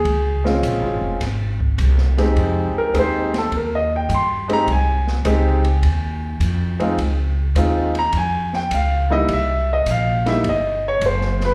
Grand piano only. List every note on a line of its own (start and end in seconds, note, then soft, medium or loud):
0.00 1.18 G#4 medium
0.44 1.17 G#3 medium
0.44 1.17 C4 medium
0.44 1.17 C#4 medium
0.44 1.18 F4 medium
2.18 2.90 G#3 medium
2.18 2.91 C4 medium
2.18 2.91 D#4 medium
2.18 2.91 G4 medium
2.78 2.95 A#4 medium
2.94 3.30 G#3 medium
2.94 3.30 C4 medium
2.94 3.30 D#4 medium
2.94 3.30 G4 medium
2.99 3.35 C5 medium
3.38 3.54 A4 medium
3.57 3.73 A#4 medium
3.75 3.92 D#5 medium
3.96 4.12 G5 medium
4.14 4.51 C6 medium
4.48 4.65 G#3 medium
4.48 4.66 C4 medium
4.48 4.66 D#4 medium
4.48 4.66 G4 medium
4.53 4.69 A#5 loud
4.72 6.39 G#5 medium
5.25 5.61 G#3 medium
5.25 5.61 C4 medium
5.25 5.61 D#4 medium
5.25 5.62 G4 medium
6.79 6.96 G#3 medium
6.79 6.96 C4 medium
6.79 6.96 D#4 medium
6.79 6.97 F4 medium
7.56 7.92 G#3 medium
7.56 7.92 C4 medium
7.56 7.92 D#4 medium
7.56 7.92 F4 medium
7.99 8.15 A#5 medium
8.17 8.54 G#5 medium
8.55 8.71 G5 medium
8.74 9.11 F5 medium
9.10 9.27 G3 medium
9.10 9.27 A#3 medium
9.10 9.27 D#4 medium
9.10 9.27 E4 medium
9.10 9.29 D#5 medium
9.33 9.70 E5 medium
9.73 9.88 D#5 medium
9.91 10.27 F5 medium
10.26 10.42 G3 medium
10.26 10.42 A#3 medium
10.26 10.43 D#4 medium
10.26 10.43 E4 medium
10.26 10.45 E5 medium
10.49 10.85 D#5 medium
10.88 11.04 C#5 medium
11.06 11.43 C5 medium
11.45 11.54 B4 medium